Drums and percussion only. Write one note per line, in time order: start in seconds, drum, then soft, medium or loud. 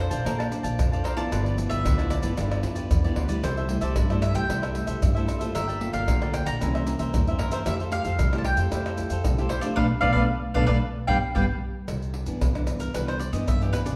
0.11 pandeiro medium
0.11 maracas medium
0.11 surdo soft
0.26 pandeiro medium
0.26 tamborim medium
0.26 maracas medium
0.26 surdo medium
0.40 pandeiro soft
0.40 tamborim medium
0.40 maracas soft
0.52 pandeiro medium
0.52 maracas medium
0.64 pandeiro medium
0.64 maracas medium
0.64 surdo soft
0.79 pandeiro medium
0.79 tamborim medium
0.79 maracas medium
0.79 surdo medium
0.93 pandeiro soft
0.93 maracas soft
1.05 pandeiro medium
1.05 tamborim medium
1.17 pandeiro medium
1.17 maracas medium
1.17 surdo soft
1.32 pandeiro medium
1.32 tamborim medium
1.32 maracas medium
1.32 surdo medium
1.46 pandeiro soft
1.46 maracas soft
1.58 pandeiro medium
1.58 maracas medium
1.71 pandeiro medium
1.71 maracas medium
1.71 surdo soft
1.86 pandeiro medium
1.86 tamborim medium
1.86 maracas medium
1.86 surdo loud
1.99 pandeiro soft
1.99 tamborim medium
1.99 maracas soft
2.11 pandeiro medium
2.11 tamborim medium
2.11 maracas medium
2.23 pandeiro medium
2.23 maracas medium
2.23 surdo soft
2.37 pandeiro medium
2.37 tamborim medium
2.37 maracas medium
2.37 surdo medium
2.52 pandeiro soft
2.52 tamborim medium
2.52 maracas soft
2.63 pandeiro medium
2.63 maracas medium
2.63 surdo soft
2.76 pandeiro medium
2.76 maracas medium
2.76 surdo soft
2.91 pandeiro medium
2.91 tamborim medium
2.91 maracas medium
2.91 surdo medium
3.04 pandeiro soft
3.04 maracas soft
3.16 pandeiro medium
3.16 tamborim medium
3.29 pandeiro medium
3.29 maracas medium
3.29 surdo soft
3.44 pandeiro medium
3.44 tamborim medium
3.44 maracas medium
3.44 surdo medium
3.57 pandeiro soft
3.57 maracas soft
3.69 pandeiro medium
3.69 maracas medium
3.81 pandeiro medium
3.81 maracas medium
3.81 surdo soft
3.96 pandeiro medium
3.96 tamborim medium
3.96 maracas medium
3.96 surdo loud
4.10 pandeiro soft
4.10 tamborim medium
4.10 maracas soft
4.22 pandeiro medium
4.22 tamborim medium
4.22 maracas medium
4.35 pandeiro medium
4.35 maracas medium
4.35 surdo soft
4.50 pandeiro medium
4.50 tamborim medium
4.50 maracas medium
4.50 surdo medium
4.63 pandeiro soft
4.63 tamborim medium
4.63 maracas soft
4.75 pandeiro medium
4.75 maracas medium
4.87 pandeiro medium
4.87 maracas medium
4.87 surdo soft
5.02 pandeiro medium
5.02 tamborim medium
5.02 maracas medium
5.02 surdo loud
5.17 pandeiro soft
5.17 maracas soft
5.28 pandeiro medium
5.28 tamborim medium
5.28 maracas medium
5.41 pandeiro medium
5.41 maracas medium
5.41 surdo soft
5.55 pandeiro medium
5.55 tamborim medium
5.55 maracas medium
5.55 surdo medium
5.69 pandeiro soft
5.69 maracas soft
5.81 pandeiro medium
5.94 pandeiro medium
5.94 maracas medium
5.94 surdo soft
6.08 pandeiro medium
6.08 tamborim medium
6.08 maracas medium
6.08 surdo loud
6.22 pandeiro soft
6.22 tamborim medium
6.22 maracas soft
6.34 pandeiro medium
6.34 tamborim medium
6.34 maracas medium
6.46 pandeiro medium
6.46 maracas medium
6.46 surdo soft
6.61 pandeiro medium
6.61 tamborim medium
6.61 maracas medium
6.61 surdo medium
6.75 pandeiro soft
6.75 tamborim medium
6.75 maracas soft
6.87 pandeiro medium
6.87 maracas medium
6.99 pandeiro medium
6.99 maracas medium
6.99 surdo soft
7.14 pandeiro medium
7.14 tamborim medium
7.14 maracas medium
7.14 surdo loud
7.27 pandeiro soft
7.27 maracas soft
7.39 pandeiro medium
7.39 tamborim medium
7.51 pandeiro medium
7.51 maracas medium
7.51 surdo soft
7.66 pandeiro medium
7.66 tamborim medium
7.66 maracas medium
7.66 surdo medium
7.80 pandeiro soft
7.80 maracas soft
7.92 pandeiro medium
7.92 maracas medium
8.05 pandeiro medium
8.05 maracas medium
8.05 surdo soft
8.19 pandeiro medium
8.19 tamborim medium
8.19 maracas medium
8.19 surdo loud
8.33 pandeiro soft
8.33 tamborim medium
8.33 maracas soft
8.45 pandeiro medium
8.45 tamborim medium
8.57 pandeiro medium
8.57 maracas medium
8.57 surdo soft
8.72 pandeiro medium
8.72 tamborim medium
8.72 maracas medium
8.72 surdo medium
8.86 pandeiro soft
8.86 tamborim medium
8.86 maracas soft
8.98 pandeiro medium
8.98 maracas medium
8.98 surdo soft
9.10 pandeiro medium
9.10 maracas medium
9.10 surdo soft
9.24 pandeiro medium
9.24 tamborim medium
9.24 maracas medium
9.24 surdo loud
9.39 pandeiro soft
9.39 maracas soft
9.50 pandeiro medium
9.50 tamborim medium
9.62 pandeiro medium
9.62 maracas medium
9.62 surdo soft
9.77 surdo loud
10.02 surdo loud
10.15 surdo loud
10.55 surdo loud
10.68 surdo medium
11.08 surdo medium
11.35 surdo medium
11.88 pandeiro medium
11.88 tamborim medium
11.88 maracas medium
11.88 surdo medium
12.02 pandeiro soft
12.02 maracas soft
12.14 pandeiro medium
12.26 pandeiro medium
12.26 maracas medium
12.26 surdo soft
12.41 pandeiro medium
12.41 tamborim medium
12.41 maracas medium
12.41 surdo medium
12.55 pandeiro soft
12.55 tamborim medium
12.55 maracas soft
12.67 pandeiro medium
12.67 tamborim medium
12.67 maracas medium
12.80 pandeiro medium
12.80 maracas medium
12.80 surdo soft
12.94 pandeiro medium
12.94 tamborim medium
12.94 maracas medium
12.94 surdo medium
13.08 pandeiro soft
13.08 tamborim medium
13.08 maracas soft
13.20 pandeiro medium
13.20 maracas medium
13.33 pandeiro medium
13.33 maracas medium
13.33 surdo soft
13.48 pandeiro medium
13.48 tamborim medium
13.48 maracas medium
13.48 surdo medium
13.62 pandeiro soft
13.62 maracas soft
13.73 pandeiro medium
13.73 tamborim medium
13.73 maracas medium
13.86 pandeiro medium
13.86 maracas medium
13.86 surdo soft